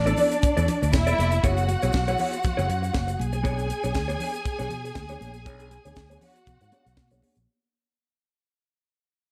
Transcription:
Already playing: fingered electric bass A1, string section D4 D5
0.06 clean electric guitar B3 E4 A4 D5, closed hi-hat, shaker
0.17 clean electric guitar B3 E4 A4 D5, open hi-hat, low conga, shaker
0.31 muted clean electric guitar stroke, closed hi-hat, shaker
0.42 muted clean electric guitar stroke, muted fingered electric bass stroke, kick, closed hi-hat, muted conga, shaker
0.57 fingered electric bass E2, clean electric guitar B3 E4 A4 D5, closed hi-hat, shaker
0.68 muted clean electric guitar stroke, closed hi-hat, low conga
0.82 fingered electric bass D2, muted clean electric guitar stroke, closed hi-hat, shaker
0.93 fingered electric bass E1, string section E4 E5, muted clean electric guitar stroke, kick, snare, high conga, shaker
1.07 clean electric guitar B3 E4 A4 D5, closed hi-hat, shaker
1.18 fingered electric bass F1, clean electric guitar B3 E4 A4 D5, closed hi-hat, high conga
1.31 muted clean electric guitar stroke, closed hi-hat, shaker
1.43 fingered electric bass F#1, clean electric guitar B3 E4 G#4 C#5, string section F#4 F#5, kick, closed hi-hat, muted conga, shaker
1.57 closed hi-hat, shaker
1.68 muted clean electric guitar stroke, closed hi-hat, muted conga, shaker
1.82 fingered electric bass B1, clean electric guitar B3 E4 G#4 C#5, closed hi-hat, shaker
1.92 fingered electric bass B1, muted clean electric guitar stroke, kick, snare, high conga, shaker
2.07 clean electric guitar B3 E4 G#4 C#5, closed hi-hat, shaker
2.18 clean electric guitar B3 E4 G#4 C#5, open hi-hat, low conga, shaker
2.33 muted clean electric guitar stroke, closed hi-hat, shaker
2.43 muted clean electric guitar stroke, kick, closed hi-hat, muted conga, low conga, shaker
2.57 fingered electric bass F#1, clean electric guitar B3 E4 G#4 C#5, closed hi-hat, shaker
2.68 fingered electric bass F#2, muted clean electric guitar stroke, closed hi-hat
2.82 muted clean electric guitar stroke, closed hi-hat, shaker
2.93 fingered electric bass F#1, muted clean electric guitar stroke, kick, snare, high conga, shaker
3.07 muted clean electric guitar stroke, closed hi-hat, shaker
3.19 fingered electric bass B1, string section G#4 G#5, closed hi-hat, high conga
3.33 muted clean electric guitar stroke, closed hi-hat, shaker
3.43 clean electric guitar B3 D4 G#4 C#5, kick, closed hi-hat, shaker
3.58 closed hi-hat, shaker
3.69 muted clean electric guitar stroke, closed hi-hat, muted conga, shaker
3.84 fingered electric bass B1, clean electric guitar B3 D4 G#4 C#5, closed hi-hat, shaker
3.95 fingered electric bass D2, muted clean electric guitar stroke, kick, snare, high conga, shaker
4.08 clean electric guitar B3 D4 G#4 C#5, closed hi-hat, shaker
4.19 clean electric guitar B3 D4 G#4 C#5, open hi-hat, low conga, shaker
4.34 muted clean electric guitar stroke, closed hi-hat, shaker
4.45 muted clean electric guitar stroke, kick, closed hi-hat, muted conga, shaker
4.59 fingered electric bass B1, clean electric guitar B3 D4 G#4 C#5, closed hi-hat, shaker
4.70 fingered electric bass B2, muted clean electric guitar stroke, closed hi-hat, low conga
4.85 muted clean electric guitar stroke, closed hi-hat, shaker
4.95 fingered electric bass D2, muted clean electric guitar stroke, kick, snare, high conga, shaker
5.09 clean electric guitar B3 D4 G#4 C#5, closed hi-hat, shaker
5.21 fingered electric bass A#1, clean electric guitar B3 D4 G#4 C#5, closed hi-hat, high conga
5.34 muted clean electric guitar stroke, closed hi-hat, shaker
5.46 fingered electric bass B1, clean electric guitar B3 D4 G#4 C#5, kick, closed hi-hat, muted conga, shaker
5.60 closed hi-hat, shaker
5.71 muted clean electric guitar stroke, closed hi-hat, muted conga, shaker
5.85 fingered electric bass D2, clean electric guitar B3 D4 G#4 C#5, closed hi-hat, shaker
5.96 fingered electric bass D2, muted clean electric guitar stroke, kick, snare, high conga, shaker
6.10 clean electric guitar B3 D4 G#4 C#5, closed hi-hat, shaker
6.21 clean electric guitar B3 D4 G#4 C#5, string section F#4 F#5, open hi-hat, low conga, shaker
6.36 muted clean electric guitar stroke, closed hi-hat, shaker
6.47 fingered electric bass B2, kick, closed hi-hat, muted conga, low conga, shaker
6.61 fingered electric bass G#2, muted clean electric guitar stroke, closed hi-hat, shaker
6.72 clean electric guitar B3 D4 G#4 C#5, closed hi-hat
6.86 fingered electric bass B1, muted clean electric guitar stroke, closed hi-hat, shaker
6.97 fingered electric bass B2, muted clean electric guitar stroke, kick, snare, high conga, shaker
7.11 fingered electric bass B1, clean electric guitar B3 D4 G#4 C#5, closed hi-hat, high conga, shaker
7.22 clean electric guitar B3 D4 G#4, open hi-hat, high conga
7.36 fingered electric bass A#1, muted clean electric guitar stroke, closed hi-hat, shaker

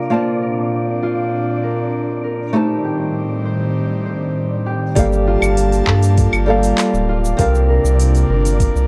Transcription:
Already playing: synth texture D4 D5, harp F4 A#4
0.10 analog synth pad A#2 C4 D4, nylon-string guitar A#3 F4 C5 D5 A5
0.42 harp A#4
1.03 harp F4
1.63 harp A#4
2.24 harp A#4
2.53 analog synth pad A2 D#3 G3 C4, nylon-string guitar A3 D#4 G4 C5 A5
2.84 harp G4
3.45 harp C5
4.06 harp C5
4.66 harp G4
4.95 sub bass G1, nylon-string guitar G3 A#3 G4 A4 F5, analog synth pad G3 A#3 F4 A5, synth texture D4 D5, kick, open hi-hat, shaker
5.13 shaker
5.27 harp F4
5.42 sub bass G1, claves, shaker
5.57 open hi-hat, shaker
5.72 open hi-hat, shaker
5.87 sub bass G2, harp A4, kick, clap
6.03 open hi-hat, shaker
6.18 kick, open hi-hat, shaker
6.33 sub bass G1, claves, shaker
6.46 nylon-string guitar G3 A#3 G4 A4 F5, harp A4
6.63 open hi-hat, shaker
6.78 clap, open hi-hat, shaker
6.94 sub bass D1, shaker
7.09 harp F4
7.25 shaker
7.37 sub bass C2, analog synth pad C3 A#3 D4, nylon-string guitar C4 G4 A#4 D5 F5, kick, open hi-hat, shaker
7.55 shaker
7.69 harp A#4
7.84 sub bass C2, shaker
8.00 open hi-hat, shaker
8.15 open hi-hat, shaker
8.30 sub bass G1, harp A#4
8.45 open hi-hat, shaker
8.60 kick, open hi-hat, shaker
8.75 sub bass C2, shaker

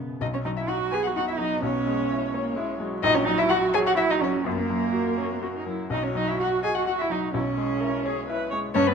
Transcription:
Already playing: grand piano F#2 B2 C#3 F#3 F#4, cello B3
0.21 grand piano B1, cello D#4, violin D#5
0.34 cello C#4, violin C#5
0.45 grand piano F#3, cello D#4, violin D#5
0.57 cello E4, violin E5
0.68 grand piano D#4, cello F#4, violin F#5
0.91 viola B3, cello G#4, grand piano B4, violin G#5
1.04 cello F#4, violin F#5
1.16 grand piano D#4, cello F#4, violin F#5
1.28 cello E4, violin E5
1.39 grand piano F#3, cello D#4, violin D#5
1.62 grand piano B1, cello C#4, violin C#5
1.87 grand piano G#3
2.11 grand piano E4
2.33 viola A#3, grand piano C#5
2.56 viola G#3, grand piano E4
2.79 viola F#3, grand piano G#3
3.03 grand piano A#1, cello D#4, violin D#5
3.15 cello C#4, violin C#5
3.25 grand piano F#3, cello D#4, violin D#5
3.38 cello E4, violin E5
3.49 grand piano F#4, cello F#4, violin F#5
3.74 cello G#4, grand piano C#5, violin G#5
3.86 cello F#4, violin F#5
3.97 cello E4, grand piano F#4, violin E5
4.10 cello D#4, violin D#5
4.21 grand piano F#3, cello C#4, violin C#5
4.45 grand piano F#2, viola A#3, cello A#3, violin A#4
4.52 cello B3
4.60 cello A#3
4.70 grand piano F#3
4.93 grand piano F#4
5.18 viola C#4, grand piano C#5
5.31 viola B3
5.42 viola C#4, grand piano F#4
5.57 viola D#4
5.67 grand piano F#3, viola E4
5.90 grand piano B1, cello D#4, viola F#4, violin D#5
6.03 cello C#4, violin C#5
6.15 grand piano F#3, cello D#4, violin D#5
6.28 cello E4, violin E5
6.39 grand piano F#4, cello F#4, violin F#5
6.63 cello G#4, grand piano D#5, violin G#5
6.75 cello F#4, violin F#5
6.87 grand piano F#4, cello F#4, violin F#5
6.99 cello E4, violin E5
7.10 grand piano F#3, cello D#4, violin D#5
7.34 grand piano B1, cello C#4, viola E4, violin C#5
7.57 grand piano G#3, viola G#4
7.80 grand piano E4, viola A#4
8.04 viola G#4, grand piano C#5
8.28 grand piano E4, viola B4
8.51 grand piano G#3, viola C#5
8.74 grand piano G2, cello C#4, viola B4, violin C#5
8.87 cello B3, violin B4

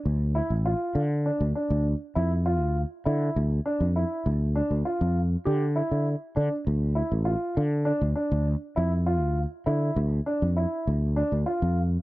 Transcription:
0.05 fretless electric bass D2
0.35 grand piano E4
0.50 fretless electric bass A1
0.66 grand piano F4
0.95 fretless electric bass D3
1.26 grand piano D4
1.40 fretless electric bass D2
1.55 grand piano D4
1.70 fretless electric bass D2
2.15 fretless electric bass F2, grand piano E4
2.46 grand piano F4
2.61 fretless electric bass D2
3.05 fretless electric bass D3, grand piano E4
3.36 fretless electric bass D2
3.66 grand piano D4
3.80 fretless electric bass F2
3.96 grand piano E4
4.26 fretless electric bass D2
4.55 grand piano D4
4.71 fretless electric bass D2
4.85 grand piano F4
5.01 fretless electric bass F2
5.45 fretless electric bass D3, grand piano G4
5.76 grand piano E4
5.91 fretless electric bass D3
6.36 fretless electric bass D3, grand piano D4
6.67 fretless electric bass D2
6.95 grand piano E4
7.12 fretless electric bass A1
7.25 grand piano F4
7.57 fretless electric bass D3
7.85 grand piano D4
8.02 fretless electric bass D2
8.15 grand piano D4
8.32 fretless electric bass D2
8.76 fretless electric bass F2, grand piano E4
9.06 grand piano F4
9.21 fretless electric bass D2
9.66 fretless electric bass D3, grand piano E4
9.96 fretless electric bass D2
10.26 grand piano D4
10.42 fretless electric bass F2
10.57 grand piano E4
10.87 fretless electric bass D2
11.16 grand piano D4
11.32 fretless electric bass D2
11.46 grand piano F4
11.62 fretless electric bass F2

